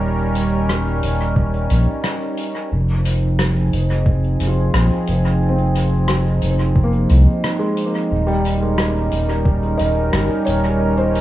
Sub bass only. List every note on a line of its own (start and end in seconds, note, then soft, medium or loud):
0.00 1.00 D#1 medium
1.03 1.68 D#1 medium
1.70 1.87 A#1 medium
2.72 3.70 F1 loud
3.72 4.37 F1 medium
4.40 4.70 F1 medium
4.73 4.90 A#1 medium
5.08 6.39 F1 medium
6.42 7.07 F1 medium
7.10 7.26 C2 medium
8.11 9.09 D#1 medium
9.12 9.76 D#1 medium
9.80 10.10 D#1 medium
10.13 10.29 G1 medium
10.47 11.21 D#1 medium